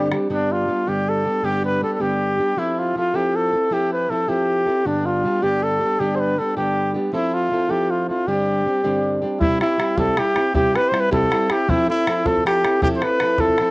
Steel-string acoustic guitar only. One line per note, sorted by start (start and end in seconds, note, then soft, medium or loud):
0.00 0.12 G2 medium
0.00 0.16 D3 medium
0.00 0.13 G3 medium
0.00 0.12 C4 medium
0.00 0.12 D4 medium
0.00 0.11 G4 medium
0.11 0.29 G3 medium
0.11 0.30 C4 medium
0.11 0.29 D4 soft
0.11 0.30 G4 medium
0.29 0.68 G2 medium
0.29 0.68 D3 medium
0.29 0.66 G3 medium
0.29 0.67 B3 medium
0.29 0.68 D4 medium
0.29 0.68 G4 medium
0.67 0.86 G3 soft
0.67 0.86 B3 medium
0.67 0.86 D4 soft
0.67 0.85 G4 soft
0.87 1.26 G2 soft
0.87 1.26 D3 soft
0.87 1.26 G3 medium
0.87 1.25 B3 soft
0.87 1.24 D4 medium
0.87 1.24 G4 medium
1.25 1.43 G3 soft
1.25 1.43 B3 soft
1.25 1.44 D4 soft
1.25 1.44 G4 soft
1.43 1.82 G2 medium
1.43 1.82 D3 medium
1.43 1.80 G3 medium
1.43 1.81 B3 medium
1.43 1.81 D4 medium
1.43 1.82 G4 medium
1.81 1.99 G3 soft
1.81 1.99 B3 medium
1.81 1.99 D4 medium
1.81 1.99 G4 medium
2.00 2.39 G2 soft
2.00 2.39 D3 soft
2.00 2.39 G3 medium
2.00 2.39 B3 medium
2.00 2.39 D4 soft
2.00 2.37 G4 medium
2.39 2.56 G3 soft
2.39 2.57 B3 soft
2.39 2.58 D4 soft
2.39 2.57 G4 soft
2.57 2.95 F3 medium
2.57 2.96 C4 medium
2.57 2.96 E4 medium
2.57 2.97 A4 medium
2.96 3.14 F3 medium
2.96 3.14 C4 soft
2.96 3.13 E4 soft
2.96 3.13 A4 medium
3.14 3.54 F3 soft
3.14 3.54 C4 medium
3.14 3.53 E4 medium
3.14 3.51 A4 medium
3.53 3.70 C4 soft
3.53 3.71 E4 soft
3.53 3.71 A4 soft
3.71 4.09 F3 medium
3.71 4.10 C4 medium
3.71 4.10 E4 medium
3.71 4.11 A4 medium
4.10 4.28 F3 soft
4.10 4.28 C4 soft
4.10 4.27 E4 medium
4.10 4.27 A4 medium
4.28 4.68 F3 soft
4.28 4.68 C4 medium
4.28 4.66 E4 soft
4.28 4.65 A4 medium
4.66 4.86 C4 soft
4.66 4.86 E4 soft
4.66 4.85 A4 soft
4.85 5.24 G2 medium
4.85 5.24 D3 medium
4.85 5.23 G3 medium
4.85 5.24 B3 medium
4.85 5.25 D4 medium
4.85 5.25 G4 medium
5.24 5.42 G3 soft
5.24 5.42 B3 soft
5.24 5.41 D4 soft
5.24 5.41 G4 medium
5.42 5.82 G2 soft
5.42 5.82 D3 medium
5.42 5.81 G3 medium
5.42 5.81 B3 medium
5.42 5.80 D4 medium
5.42 5.79 G4 medium
5.80 5.99 G3 soft
5.80 5.99 B3 soft
5.80 6.00 D4 soft
5.80 5.99 G4 medium
5.99 6.38 G2 medium
5.99 6.38 D3 medium
5.99 6.36 G3 medium
5.99 6.37 B3 medium
5.99 6.37 D4 medium
5.99 6.38 G4 medium
6.37 6.56 G3 soft
6.37 6.56 B3 medium
6.37 6.56 D4 medium
6.37 6.55 G4 soft
6.57 6.96 G2 soft
6.57 6.96 D3 medium
6.57 6.95 G3 medium
6.57 6.94 B3 medium
6.57 6.94 D4 medium
6.57 6.93 G4 medium
6.94 7.12 G3 soft
6.94 7.13 B3 soft
6.94 7.14 D4 soft
6.94 7.13 G4 soft
7.13 7.50 F3 medium
7.13 7.51 C4 medium
7.13 7.52 E4 medium
7.13 7.52 A4 medium
7.51 7.70 F3 soft
7.51 7.69 C4 medium
7.51 7.68 E4 soft
7.51 7.68 A4 medium
7.69 8.09 F3 medium
7.69 8.10 C4 medium
7.69 8.09 E4 medium
7.69 8.08 A4 medium
8.09 8.27 C4 soft
8.09 8.28 E4 soft
8.09 8.27 A4 soft
8.27 8.66 G2 medium
8.27 8.66 D3 medium
8.27 8.65 G3 medium
8.27 8.66 C4 medium
8.27 8.66 D4 medium
8.27 8.67 G4 medium
8.65 8.84 G3 medium
8.65 8.83 C4 medium
8.65 8.83 D4 medium
8.65 8.83 G4 medium
8.84 9.24 G2 medium
8.84 9.23 D3 soft
8.84 9.24 G3 medium
8.84 9.23 C4 medium
8.84 9.21 D4 medium
8.84 9.21 G4 medium
9.22 9.40 G3 soft
9.22 9.40 C4 soft
9.22 9.41 D4 medium
9.22 9.41 G4 medium
9.40 9.61 C3 medium
9.40 9.61 G3 medium
9.40 9.61 C4 medium
9.40 9.60 E4 medium
9.40 9.59 G4 medium
9.60 9.78 C4 soft
9.60 9.78 E4 soft
9.60 9.79 G4 medium
9.78 9.97 G3 medium
9.78 9.97 C4 medium
9.78 9.96 E4 medium
9.78 9.96 G4 medium
9.98 10.19 C3 medium
9.98 10.16 G3 medium
9.98 10.16 C4 medium
9.98 10.18 E4 medium
9.98 10.18 G4 medium
10.17 10.36 G3 medium
10.17 10.36 C4 soft
10.17 10.35 E4 medium
10.17 10.34 G4 medium
10.35 10.53 C4 soft
10.35 10.54 E4 soft
10.35 10.54 G4 medium
10.54 10.75 C3 medium
10.54 10.75 G3 medium
10.54 10.75 C4 medium
10.54 10.74 E4 medium
10.54 10.73 G4 medium
10.74 10.91 C4 soft
10.74 10.92 E4 soft
10.74 10.93 G4 medium
10.92 11.11 G3 medium
10.92 11.11 C4 soft
10.92 11.10 E4 medium
10.92 11.10 G4 medium
11.11 11.32 C3 medium
11.11 11.30 G3 medium
11.11 11.31 C4 medium
11.11 11.32 E4 medium
11.11 11.32 G4 medium
11.31 11.50 G3 soft
11.31 11.50 C4 medium
11.31 11.49 E4 medium
11.31 11.48 G4 medium
11.49 11.68 C4 soft
11.49 11.69 E4 medium
11.49 11.68 G4 medium
11.68 11.89 F3 medium
11.68 11.89 C4 medium
11.68 11.88 E4 medium
11.68 11.87 A4 medium
11.88 12.07 C4 soft
11.88 12.07 E4 medium
11.88 12.07 A4 medium
12.07 12.25 F3 medium
12.07 12.25 C4 medium
12.07 12.25 E4 medium
12.07 12.24 A4 medium
12.25 12.44 F3 medium
12.25 12.45 C4 medium
12.25 12.45 E4 medium
12.25 12.45 A4 medium
12.45 12.64 F3 medium
12.45 12.64 C4 medium
12.45 12.64 E4 medium
12.45 12.62 A4 medium
12.63 12.81 C4 soft
12.63 12.82 E4 soft
12.63 12.82 A4 medium
12.82 13.02 F3 medium
12.82 13.02 C4 medium
12.82 13.02 E4 medium
12.82 13.01 A4 medium
13.02 13.20 C4 soft
13.02 13.21 E4 soft
13.02 13.21 A4 medium
13.20 13.39 F3 soft
13.20 13.39 C4 medium
13.20 13.38 E4 medium
13.20 13.38 A4 medium
13.39 13.58 F3 soft
13.39 13.59 C4 medium
13.39 13.59 E4 medium
13.39 13.59 A4 medium
13.59 13.71 F3 medium
13.59 13.71 C4 medium
13.59 13.71 E4 medium
13.59 13.71 A4 medium